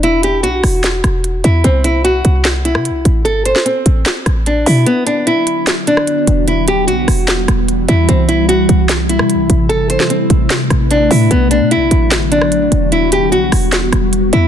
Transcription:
0.00 0.45 E1 loud
0.00 0.22 E4 medium
0.00 closed hi-hat medium
0.23 0.42 G4 medium
0.23 closed hi-hat medium
0.43 0.63 B1 loud
0.43 1.40 F#4 medium
0.43 closed hi-hat medium
0.64 1.02 E1 loud
0.64 cross-stick medium
0.64 open hi-hat medium
0.84 snare loud
0.84 clap loud
0.84 closed hi-hat medium
1.04 1.43 E1 loud
1.04 cross-stick medium
1.04 closed hi-hat medium
1.24 closed hi-hat medium
1.44 1.64 E2 loud
1.44 1.63 E4 medium
1.44 closed hi-hat medium
1.64 2.22 C2 loud
1.64 1.83 C4 medium
1.64 closed hi-hat medium
1.84 2.03 E4 medium
1.84 closed hi-hat medium
2.04 2.42 F#4 medium
2.04 closed hi-hat medium
2.25 2.77 C2 loud
2.25 closed hi-hat medium
2.45 snare loud
2.45 clap loud
2.45 closed hi-hat medium
2.65 3.22 E4 medium
2.65 closed hi-hat medium
2.75 2.92 C3 loud
2.75 cross-stick loud
2.85 closed hi-hat medium
2.90 3.05 C2 loud
3.05 3.27 A1 loud
3.05 closed hi-hat medium
3.25 3.54 G1 loud
3.25 3.44 A4 loud
3.25 closed hi-hat medium
3.46 3.64 C5 medium
3.46 closed hi-hat medium
3.56 snare medium
3.65 4.42 C4 medium
3.65 closed hi-hat medium
3.86 4.05 A1 loud
3.86 closed hi-hat medium
4.06 snare loud
4.06 clap loud
4.06 closed hi-hat medium
4.26 4.65 A1 loud
4.26 cross-stick medium
4.26 closed hi-hat medium
4.46 4.65 D4 medium
4.46 closed hi-hat medium
4.66 4.86 B2 loud
4.66 4.85 E4 medium
4.66 open hi-hat medium
4.86 6.46 D3 medium
4.86 6.46 F#3 medium
4.86 8.05 B3 medium
4.86 5.05 B3 medium
4.86 8.05 F#4 medium
4.86 closed hi-hat medium
5.07 5.25 D4 medium
5.07 closed hi-hat medium
5.27 5.65 E4 medium
5.27 closed hi-hat medium
5.47 closed hi-hat medium
5.67 snare loud
5.67 clap loud
5.67 closed hi-hat medium
5.87 6.44 D4 medium
5.87 closed hi-hat medium
5.97 cross-stick loud
6.07 closed hi-hat medium
6.27 6.89 E1 loud
6.27 closed hi-hat medium
6.48 9.67 E3 medium
6.48 9.67 G3 medium
6.48 6.66 E4 medium
6.48 closed hi-hat medium
6.68 6.87 G4 medium
6.68 closed hi-hat medium
6.87 7.07 B1 loud
6.87 7.84 F#4 medium
6.87 closed hi-hat medium
7.08 7.47 E1 loud
7.08 cross-stick medium
7.08 open hi-hat medium
7.28 snare loud
7.28 clap loud
7.28 closed hi-hat medium
7.48 7.87 E1 loud
7.48 cross-stick medium
7.48 closed hi-hat medium
7.68 closed hi-hat medium
7.89 8.08 E2 loud
7.89 8.07 E4 medium
7.89 closed hi-hat medium
8.09 8.67 C2 loud
8.09 11.28 C3 medium
8.09 8.27 C4 medium
8.09 11.28 E4 medium
8.09 closed hi-hat medium
8.29 8.47 E4 medium
8.29 closed hi-hat medium
8.49 8.87 F#4 loud
8.49 closed hi-hat medium
8.69 9.21 C2 loud
8.69 closed hi-hat medium
8.89 snare loud
8.89 clap loud
8.89 closed hi-hat medium
9.09 9.66 E4 medium
9.09 closed hi-hat medium
9.19 9.36 C3 loud
9.19 cross-stick loud
9.30 closed hi-hat medium
9.35 9.49 C2 loud
9.50 9.71 A1 loud
9.50 closed hi-hat medium
9.69 9.98 G1 loud
9.69 11.29 A3 medium
9.69 9.88 A4 loud
9.69 11.29 B4 medium
9.69 closed hi-hat medium
9.90 10.09 C5 medium
9.90 closed hi-hat medium
10.00 snare medium
10.10 10.86 C4 medium
10.10 closed hi-hat medium
10.30 10.49 A1 loud
10.30 closed hi-hat medium
10.50 snare loud
10.50 clap loud
10.50 closed hi-hat medium
10.70 11.09 A1 loud
10.70 cross-stick medium
10.70 closed hi-hat medium
10.91 11.10 D4 loud
10.91 closed hi-hat medium
11.11 11.30 A2 loud
11.11 11.30 E4 medium
11.11 open hi-hat medium
11.31 11.62 B1 loud
11.31 12.90 D3 medium
11.31 12.90 F#3 medium
11.31 12.90 B3 medium
11.31 11.50 B3 medium
11.31 14.48 F#4 medium
11.31 closed hi-hat medium
11.51 11.70 D4 medium
11.51 closed hi-hat medium
11.61 11.78 B2 loud
11.71 12.09 E4 medium
11.71 closed hi-hat medium
11.76 11.90 B1 loud
11.91 12.69 A1 loud
11.91 closed hi-hat medium
12.11 snare loud
12.11 clap loud
12.11 closed hi-hat medium
12.32 12.88 D4 medium
12.32 closed hi-hat medium
12.42 cross-stick medium
12.52 closed hi-hat medium
12.72 13.34 E1 loud
12.72 closed hi-hat medium
12.92 14.48 E3 medium
12.92 14.48 G3 medium
12.92 14.48 B3 medium
12.92 13.11 E4 medium
12.92 closed hi-hat medium
13.12 13.31 G4 medium
13.12 closed hi-hat medium
13.32 13.51 B1 loud
13.32 14.29 F#4 medium
13.32 closed hi-hat medium
13.52 13.91 E1 loud
13.52 cross-stick medium
13.52 open hi-hat medium
13.72 snare loud
13.72 clap loud
13.72 closed hi-hat medium
13.93 14.31 E1 loud
13.93 cross-stick medium
13.93 closed hi-hat medium
14.13 closed hi-hat medium
14.33 14.48 E2 loud
14.33 14.48 E4 medium
14.33 closed hi-hat medium

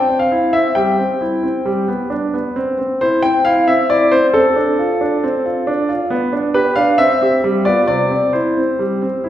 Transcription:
0.00 0.17 G5 medium
0.09 0.33 C4 soft
0.19 0.54 F5 medium
0.32 0.55 E4 soft
0.53 0.76 C4 soft
0.53 0.76 E5 medium
0.75 0.98 G3 soft
0.75 2.07 G5 medium
0.99 1.22 C4 soft
1.21 1.45 E4 soft
1.43 1.66 C4 soft
1.65 1.88 G3 soft
1.88 2.12 B3 soft
2.10 2.34 D4 soft
2.34 2.56 B3 soft
2.56 2.77 C4 soft
2.78 3.02 C4 soft
3.01 3.25 E4 soft
3.01 3.21 C5 medium
3.23 3.47 C4 soft
3.23 3.45 G5 medium
3.45 3.69 E4 soft
3.45 3.68 F5 medium
3.68 3.91 C4 soft
3.68 3.88 E5 medium
3.90 4.14 E4 soft
3.90 4.12 D5 medium
4.12 4.33 C4 soft
4.12 4.25 C5 medium
4.34 4.56 C4 soft
4.34 5.89 A4 medium
4.56 4.80 D4 soft
4.79 5.02 F4 soft
5.01 5.24 D4 soft
5.24 5.45 C4 soft
5.46 5.68 F4 soft
5.67 5.90 D4 soft
5.89 6.11 F4 soft
6.10 6.32 B3 medium
6.33 6.56 D4 soft
6.54 6.78 G4 soft
6.54 6.76 B4 medium
6.76 6.99 D4 soft
6.76 6.96 F5 medium
6.98 7.20 C4 medium
6.98 7.38 E5 medium
7.21 7.37 C4 soft
7.21 7.38 G4 soft
7.44 7.65 G3 medium
7.65 7.82 B3 soft
7.65 7.82 F4 soft
7.65 7.79 D5 medium
7.88 8.10 C3 soft
7.88 8.30 D5 medium
8.11 8.35 C4 soft
8.33 8.58 E4 soft
8.33 9.29 C5 soft
8.57 8.81 C4 soft
8.79 9.03 G3 soft
9.02 9.26 C4 soft
9.24 9.29 E4 soft

